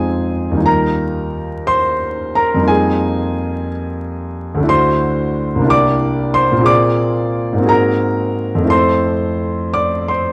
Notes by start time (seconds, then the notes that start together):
Already playing: F2 G#3 C4 D#4 F4 G#4 G#5
0.51 D#2 G3
0.57 D#4 F4
0.66 A#4 A#5
1.67 C5 C6
2.35 A#4 A#5
2.54 F2 G3
2.60 A#3 D#4
2.66 F4 G#4 G#5
4.55 D2 A3
4.60 D4 E4
4.67 F#4 C5 C6
5.55 C2 A#3
5.62 D4 E4
5.69 G4 D5 D6
6.34 C5 C6
6.52 A#2 A#3
6.58 C4 F4
6.63 G#4 D5 D6
7.53 G#2 A#3
7.59 C4 F#4
7.65 G#4 A#4 A#5
8.55 F2 A3
8.62 C4 E4
8.68 A4 C5 C6
9.73 D5 D6
10.08 C5 C6